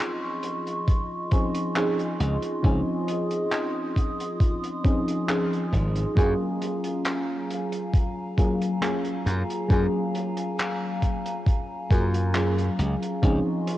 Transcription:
Already playing: F3 C4 C#4 D#4 F4 G#4 D#5 C6 C#6
0.00 closed hi-hat
0.43 closed hi-hat
0.67 closed hi-hat
0.88 kick, closed hi-hat
1.31 F3 C4 C#4 D#4 G#4, kick, closed hi-hat
1.55 closed hi-hat
1.75 F3 C4 C#4 D#4 G#4, clap, closed hi-hat
1.99 closed hi-hat
2.20 C#2, closed hi-hat
2.42 closed hi-hat
2.62 C#2 F3 C4 C#4 D#4 G#4 D#6, kick, closed hi-hat
3.08 closed hi-hat
3.31 closed hi-hat
3.52 clap, closed hi-hat
3.96 kick, closed hi-hat
4.20 closed hi-hat
4.40 kick, closed hi-hat
4.64 closed hi-hat
4.84 F3 C4 C#4 D#4 G#4, kick, closed hi-hat
5.08 closed hi-hat
5.28 F3 C4 C#4 D#4 G#4, clap, closed hi-hat
5.53 closed hi-hat
5.73 G#1, kick, closed hi-hat
5.96 closed hi-hat
6.15 F#2 F#3 A#3 C#4 F4 G#4 F5 G#5 A#5, kick, closed hi-hat
6.62 closed hi-hat
6.84 closed hi-hat
7.05 clap, closed hi-hat
7.50 closed hi-hat
7.72 closed hi-hat
7.93 kick, closed hi-hat
8.37 F#3 A#3 C#4 F4 G#4, kick, closed hi-hat
8.62 closed hi-hat
8.81 F#3 A#3 C#4 F4 G#4, clap, closed hi-hat
9.05 closed hi-hat
9.26 F#2, closed hi-hat
9.50 closed hi-hat
9.68 F#2 F#3 A#3 C#4 F4 G#4, kick, closed hi-hat
10.15 closed hi-hat
10.37 closed hi-hat
10.59 clap, closed hi-hat
11.02 kick, closed hi-hat
11.26 closed hi-hat
11.46 kick, closed hi-hat
11.90 F#2 F#3 A#3 C#4 F4 G#4, kick, closed hi-hat
12.14 closed hi-hat
12.34 F#3 A#3 C#4 F4 G#4, clap, closed hi-hat
12.59 closed hi-hat
12.79 C#2, closed hi-hat
13.03 closed hi-hat
13.22 C#2 F3 C4 C#4 D#4 F4 G#4 D#5 C6 C#6, kick, closed hi-hat
13.67 closed hi-hat

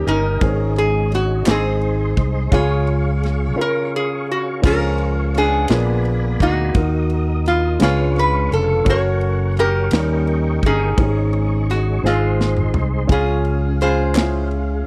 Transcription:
Already playing: D#3 G3 A#3 C#4 D#4 A#4 C#5 D#5 G5
0.07 G1 C#4 D#4 A#4, ride
0.40 G#1 G#2 C4 D#4 G#4 C#5 D#5, kick, ride
0.46 C#4
0.76 G#4, ride
1.12 F#4, snare, ride
1.45 G#1 G#2 C4 D#4 G#4 C5 C6, snare, clap, ride
1.50 C4 D#4 G#4
1.81 ride
2.17 C2, kick, ride
2.51 C#2 C#3 C#4 F4 G#4 C#5 F5 C#6, kick, ride
2.87 ride
3.23 snare, ride
3.56 C#4 F4 A#4
3.61 A#4
3.96 G#4
4.31 F#4
4.62 C#2 F3 C#4 F4 G#4 C#5 F5 C#6, kick, crash
4.67 A#4
4.98 ride
5.34 B3 D4 G#4, snare, ride
5.68 A#1 A#2 B3 F4 G#4 A#4 C#5 D5 G#5 B5, snare, ride
5.78 D5
6.05 ride
6.40 D2 A#3 D#4 F#4, kick, ride
6.74 D#2 D#3 D#4 F4 A#4 D#5 D#6, kick, ride
6.82 F#4
7.10 ride
7.46 F4, snare, ride
7.79 C#2 C#3 G#3 C#4 D4 F4 G#4 B4 C#5 F5 C#6, snare, ride
7.83 C#5
8.16 B4, snare, ride
8.51 F1 A4, ride
8.85 F#1 C#4 F#4 A4 A#4 C#5 F#5, kick, ride
8.90 F#4 A#4 C#5
9.21 ride
9.57 C#4 G4 A#4, snare, ride
9.91 D#2 D#3 G3 A#3 C#4 D#4 A#4 D#5 G5 C#6, snare, ride
10.27 ride
10.63 G1 C#4 D#4 G#4, kick, ride
10.97 G#1 G#2 C#4 D#4 G4 G#4 C#5, kick, ride
11.07 G#4
11.33 ride
11.70 F#4, snare, ride
12.03 G#1 G#2 C4 D#4 F4 G#4 C5 D#5 C6, snare
12.07 G#3
12.41 snare
12.57 mid tom
12.74 C2, floor tom
13.07 C#2 C#3 C#4 F4 G#4 F5, kick, ride
13.12 C#4 F4 G#4
13.45 ride
13.81 F4 G#4 C5, snare, ride
14.15 C#4 E4 G#4, snare, clap, ride
14.22 F4
14.51 ride

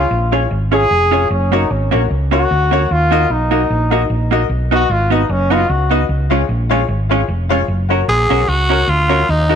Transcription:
Already playing: F4
0.11 A#1
0.31 C#4 F4 G#4 C#5
0.50 G#1 G#4 C#5
0.71 C#4 F4 G#4 C#5
0.91 F1
1.11 C#4 F4 G#4 C#5
1.30 F#1 C#4
1.52 A#3 C#4 D#4 F#4 A#4 C#5
1.70 G#1 C#4
1.91 A#1 A#3 C#4 F#4 A#4 C#5
2.10 C#2 A#4 C#5
2.31 A#3 C#4 F#4 A#4 C#5
2.51 D2
2.71 A#3 C#4 F#4 A#4 C#5
2.91 D#2 F4
3.11 A#3 D#4 F#4 A#4 D#5
3.30 B1 D#4
3.51 A#3 D#4 F#4 A#4 D#5
3.69 A#1 A#4
3.90 A#3 D#4 F#4 A#4 D#5
4.10 A#1
4.31 A#3 D#4 F#4 A#4 D#5
4.49 B1
4.71 B3 D#4 F#4 B4 D#5
4.89 G#1 F4
5.10 B3 D#4 F#4 B4 D#5
5.29 F#1 C#4 B4 D#5
5.50 B3 D#4 F4 F#4 B4 D#5
5.69 C#2 F#4
5.90 B3 D#4 F#4 B4 D#5
6.09 C#2
6.30 G#3 C#4 F4 G#4 C#5
6.49 A#1
6.70 G#3 C#4 F4 G#4 C#5
6.88 G#1
7.09 G#3 C#4 F4 G#4 C#5
7.28 F1
7.49 G#3 C#4 F4 G#4 C#5
7.68 F#1
7.89 C#4 F#4 A#4 C#5
8.08 A#1 G#4
8.29 B1 C#4 F#4 A#4 C#5
8.48 C#2 F#4
8.69 C#4 F#4 A#4 C#5
8.88 D2 F4
9.09 C#4 F#4 A#4 C#5
9.29 D#2 D#4
9.49 D#4 F#4 A#4 D#5

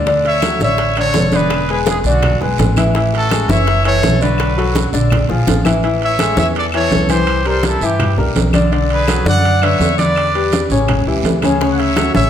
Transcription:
Already playing: D2
0.06 D3 D4 D5, high bongo, high conga, high timbale, long guiro
0.25 C#5 E5, high bongo, high conga, high timbale
0.42 F#3 F#4 A4, high bongo, high conga, high timbale, low timbale, short guiro, claves
0.59 A1 D3 D4 C#5 E5, high conga, short guiro
0.78 high bongo, high conga, high timbale, long guiro
0.96 D3 D4 A4 C#5, high bongo, high conga, high timbale, claves
1.14 E1, high bongo, low bongo, high conga, low timbale, short guiro
1.32 D3 D4 G#4 B4 D5, high bongo, high conga, high timbale, short guiro
1.50 high bongo, high conga, high timbale, long guiro, claves
1.69 G#3 G#4 B4, high conga, high timbale
1.86 E4, high bongo, high conga, high timbale, low timbale, short guiro
1.90 G#4
2.04 B1 D3 D4 D5, high bongo, high conga, short guiro
2.08 F#4
2.22 high bongo, high conga, low conga, high timbale, long guiro, claves
2.40 B1 G#3 G#4 B4, high bongo, high conga, low conga
2.58 A1, high bongo, low bongo, high conga, high timbale, low timbale, short guiro
2.76 E3 E4 E5, high bongo, high conga, high timbale, short guiro, claves
2.95 E3 E4 E5, high bongo, high conga, high timbale, long guiro
3.13 F#4 A4, high bongo, high conga, high timbale
3.31 G#3 G#4 A4, high bongo, high conga, high timbale, low timbale, short guiro, claves
3.48 F#1 E3 E4 C#5 E5, high conga, short guiro
3.67 high bongo, high timbale, long guiro
3.84 E3 E4 A4 C#5 E5, high bongo, high conga, high timbale, claves
4.03 B1, high bongo, low bongo, high conga, low timbale, short guiro
4.21 D3 D4 F#4 B4 D5, high bongo, high timbale, short guiro
4.38 high bongo, high conga, high timbale, long guiro, claves
4.58 F#3 F#4 A4, high conga, high timbale
4.75 high bongo, high conga, high timbale, low timbale, short guiro
4.93 A#1 D3 D4 D5, high bongo, high conga, short guiro
5.10 low bongo, high conga, low conga, high timbale, long guiro, claves
5.29 A#1 F3 F4 G#4, low bongo, high conga
5.47 A1, low bongo, high conga, high timbale, low timbale, short guiro
5.65 E3 E4 E5, low bongo, high conga, high timbale, short guiro, claves
5.83 E3 E4 E5, high conga, high timbale, long guiro
6.01 C#5 E5, high conga, high timbale
6.19 G#3 G#4 A4, high conga, high timbale, low timbale, short guiro, claves
6.37 E2 E3 E4 C#5 E5, high conga, short guiro
6.55 A4 D5, high conga, high timbale, long guiro
6.72 E3 E4 A4 C#5 E5, high conga, high timbale, claves
6.91 C2, high conga, low timbale, short guiro
7.09 E3 E4 G4 C5 E5, high conga, high timbale, short guiro
7.27 high conga, high timbale, long guiro, claves
7.45 G3 G4 A4 A#4 C5, high conga, high timbale
7.63 E4, high conga, high timbale, low timbale, short guiro
7.67 A4
7.81 G2 E3 E4 G4 E5, high conga, short guiro
8.00 high conga, low conga, high timbale, long guiro, claves
8.17 C2 G3 G4 A#4, high conga, low conga
8.35 B1, high conga, high timbale, low timbale, short guiro
8.53 D3 D4 D5, high conga, high timbale, short guiro, claves
8.72 D3 D4 D5, high conga, high timbale, long guiro
8.90 G#4 B4, high conga, high timbale
9.08 F#3 F#4 A4, high conga, high timbale, low timbale, short guiro, claves
9.25 F#2 D3 D4 D5 F#5, high conga, short guiro
9.43 high conga, high timbale, long guiro
9.62 D3 D4 B4 C#5 E5, high conga, high timbale, claves
9.80 E2, high conga, low timbale, short guiro
9.98 D3 D4 B4 D5, high conga, high timbale, short guiro
10.15 high conga, high timbale, long guiro, claves
10.35 G3 G4 B4, high conga, high timbale
10.52 high conga, high timbale, low timbale, short guiro
10.70 A1 C#3 C#4 C#5, high conga, short guiro
10.88 high conga, low conga, high timbale, long guiro, claves
11.06 C#2 E3 E4 G4, high conga
11.23 D2, high conga, high timbale, low timbale, short guiro
11.42 C#3 C#4 C#5, high conga, high timbale, short guiro, claves
11.60 C#3 C#4 C#5, high bongo, high conga, high timbale, long guiro
11.71 F#5
11.79 C#5 E5, high bongo, high conga, high timbale
11.96 F#3 F#4 A4, high bongo, high conga, high timbale, low timbale, short guiro, claves
12.14 A1 C#3 C#4 C#5 E5, high conga, short guiro

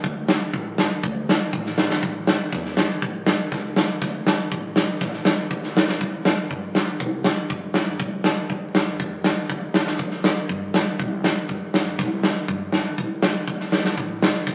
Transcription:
0.04 D2, kick
0.28 snare
0.53 A1, kick
0.78 snare
1.03 D2, kick
1.29 snare
1.53 A1, kick
1.66 snare
1.78 snare
1.90 snare
2.02 A1, kick
2.27 snare
2.52 E2, kick, snare
2.66 snare
2.77 snare
3.02 A1, kick
3.26 snare
3.51 C#2, kick, snare
3.76 snare
4.01 D2, kick, snare
4.27 snare
4.52 A1, kick
4.76 snare
5.01 A1, kick, snare
5.13 snare
5.25 E2, snare
5.50 D2, kick
5.64 snare
5.76 C2, snare
5.88 snare
6.01 C2, kick
6.25 snare
6.50 G2, kick
6.75 snare
7.00 C2, kick
7.24 snare
7.50 G2, kick
7.74 snare
8.00 C2, kick
8.24 snare
8.49 G2, kick
8.75 snare
8.99 F2, kick
9.24 snare
9.49 D2, kick
9.74 snare
9.87 snare
9.99 C2, kick
10.11 snare
10.24 snare
10.49 G2, kick
10.74 snare
10.99 C2, kick
11.24 snare
11.49 G2, kick
11.74 snare
11.98 C2, kick, snare
12.23 snare
12.48 G2, kick
12.72 snare
12.98 C2, kick
13.22 snare
13.47 E2, kick
13.60 snare
13.72 snare
13.85 snare
13.97 A1, kick
14.22 snare
14.34 snare
14.47 E2, kick, snare

